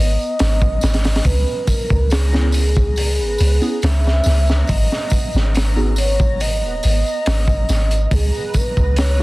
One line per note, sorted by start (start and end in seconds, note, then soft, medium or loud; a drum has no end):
0.00 0.17 G#1 medium
0.00 9.23 B3 medium
0.00 1.26 D#5 loud
0.00 9.23 A#5 medium
0.19 tambourine soft
0.39 0.78 G#1 medium
0.39 snare loud
0.39 open hi-hat medium
0.39 tambourine soft
0.62 kick medium
0.62 tambourine soft
0.81 1.21 G#1 medium
0.81 snare medium
0.81 open hi-hat medium
0.81 tambourine medium
0.94 snare medium
0.94 open hi-hat medium
1.04 snare medium
1.04 open hi-hat medium
1.04 tambourine soft
1.16 snare medium
1.16 open hi-hat medium
1.24 1.45 C#2 medium
1.24 1.70 B4 loud
1.24 kick loud
1.24 open hi-hat medium
1.24 tambourine soft
1.46 tambourine soft
1.67 2.12 A#4 medium
1.67 kick medium
1.67 open hi-hat medium
1.67 tambourine loud
1.89 3.21 C#2 loud
1.89 kick medium
1.89 tambourine soft
2.10 3.85 G#4 loud
2.10 snare loud
2.10 open hi-hat medium
2.10 tambourine medium
2.32 2.59 B3 medium
2.32 2.60 C#4 medium
2.32 2.60 E4 medium
2.32 2.60 G#4 medium
2.32 snare medium
2.32 tambourine soft
2.52 open hi-hat medium
2.52 tambourine medium
2.75 kick medium
2.75 tambourine soft
2.96 open hi-hat medium
2.96 tambourine soft
3.18 3.37 G#1 medium
3.18 tambourine soft
3.38 3.59 C#2 medium
3.38 open hi-hat medium
3.38 tambourine medium
3.61 3.78 B3 loud
3.61 3.78 C#4 medium
3.61 3.78 E4 medium
3.61 3.79 G#4 loud
3.61 tambourine soft
3.82 4.21 C#2 medium
3.82 4.70 E5 loud
3.82 snare loud
3.82 open hi-hat medium
3.82 tambourine medium
4.04 snare soft
4.04 tambourine soft
4.24 4.63 C#2 medium
4.24 snare soft
4.24 open hi-hat medium
4.24 tambourine medium
4.47 snare medium
4.47 tambourine soft
4.67 4.89 G#1 medium
4.67 5.54 D#5 loud
4.67 kick loud
4.67 open hi-hat medium
4.67 tambourine soft
4.90 snare soft
4.90 tambourine soft
5.10 kick medium
5.10 open hi-hat medium
5.10 tambourine medium
5.33 6.64 G#1 loud
5.33 snare medium
5.33 tambourine soft
5.54 snare loud
5.54 open hi-hat medium
5.54 tambourine medium
5.76 5.92 B3 medium
5.76 5.93 D#4 medium
5.76 5.93 F#4 medium
5.76 5.93 G#4 loud
5.76 tambourine soft
5.96 6.42 C#5 medium
5.96 open hi-hat medium
5.96 tambourine medium
6.19 kick medium
6.19 tambourine soft
6.40 8.15 D#5 loud
6.40 open hi-hat medium
6.40 tambourine medium
6.63 6.80 D#1 medium
6.63 tambourine soft
6.83 7.03 G#1 medium
6.83 open hi-hat medium
6.83 tambourine medium
7.06 tambourine soft
7.26 7.64 G#1 medium
7.26 snare loud
7.26 open hi-hat medium
7.26 tambourine soft
7.48 kick medium
7.48 tambourine soft
7.69 8.07 G#1 medium
7.69 snare soft
7.69 open hi-hat soft
7.69 tambourine medium
7.91 closed hi-hat soft
7.91 tambourine soft
8.11 8.31 C#2 loud
8.11 8.57 G#4 medium
8.11 kick loud
8.11 open hi-hat medium
8.11 tambourine soft
8.35 tambourine soft
8.54 8.99 B4 medium
8.54 kick medium
8.54 open hi-hat medium
8.54 tambourine medium
8.77 9.23 C#2 medium
8.77 kick medium
8.77 tambourine soft
8.96 9.23 C#5 loud
8.96 snare loud
8.96 open hi-hat medium
8.96 tambourine medium
9.19 9.23 B3 medium
9.19 9.23 C#4 medium